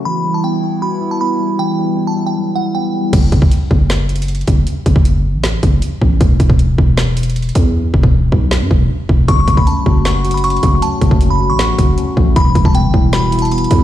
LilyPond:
<<
  \new Staff \with { instrumentName = "Synth bell" } { \time 4/4 \key fis \phrygian \tempo 4 = 156 b''8. a''16 g''4 b''8. a''16 b''4 | g''4~ g''16 a''8 g''16 r8 fis''8 g''4 | r1 | r1 |
r1 | r1 | cis'''8. b''16 a''4 cis'''8. b''16 cis'''4 | a''4~ a''16 b''8 cis'''2~ cis'''16 |
b''8. a''16 g''4 b''8. a''16 b''4 | }
  \new Staff \with { instrumentName = "Analog synth pad" } { \time 4/4 \key fis \phrygian <e b e'>1~ | <e b e'>1 | r1 | r1 |
r1 | r1 | r1 | r1 |
r1 | }
  \new Staff \with { instrumentName = "Tine electric piano" } { \time 4/4 \key fis \phrygian e8 g8 b8 e'8 fis'8 e'8 b8 g8 | e8 g8 b8 e'8 fis8 e'8 b8 g8 | r1 | r1 |
r1 | r1 | fis8 a8 cis'8 fis'8 fis''8 fis'8 cis'8 a8 | fis8 a8 cis'8 fis'8 fis''8 fis'8 cis'8 a8 |
e8 g8 b8 e'8 fis'8 e'8 b8 g8 | }
  \new Staff \with { instrumentName = "808-style bass" } { \clef bass \time 4/4 \key fis \phrygian r1 | r1 | fis,,8 fis,,8 r8 fis,,2 fis,,8 | r8 fis,,4~ fis,,16 a,,8. fis,,8 r8 a,,8 |
e,,8 e,,4 e,,2 e,8~ | e,8 e,,4 b,,8. g,16 e,,8 r8 e,,8 | fis,,8 fis,,8 r8 fis,,2 fis,,8 | r8 fis,,4~ fis,,16 a,,8. fis,,8 r8 a,,8 |
e,,8 e,,16 e,,8 g,,16 e,,2 e,8 | }
  \new DrumStaff \with { instrumentName = "Drums" } \drummode { \time 4/4 r4 r4 r4 r4 | r4 r4 r4 r4 | <cymc hh bd>8 <hh bd>16 bd16 hh8 bd8 \tuplet 3/2 { <hh sn>16 r16 r16 hh16 hh16 hh16 hh16 hh16 hh16 <hh bd>16 r16 r16 } | hh8 <hh bd>16 bd16 hh4 <hh sn>8 <hh bd>8 hh8 bd8 |
<hh bd>8 <hh bd>16 bd16 hh8 bd8 \tuplet 3/2 { <hh sn>16 r16 r16 hh16 hh16 hh16 hh16 hh16 hh16 <hh bd>16 r16 r16 } | r8 bd16 bd16 r8 bd8 sn8 bd8 r8 bd8 | <hh bd>8 <hh bd>16 bd16 hh8 bd8 \tuplet 3/2 { <hh sn>16 r16 r16 hh16 hh16 hh16 hh16 hh16 hh16 <hh bd>16 r16 r16 } | hh8 <hh bd>16 bd16 hh4 <hh sn>8 <hh bd>8 hh8 bd8 |
<hh bd>8 <hh bd>16 bd16 hh8 bd8 \tuplet 3/2 { <hh sn>16 r16 r16 hh16 hh16 hh16 hh16 hh16 hh16 <hh bd>16 r16 r16 } | }
>>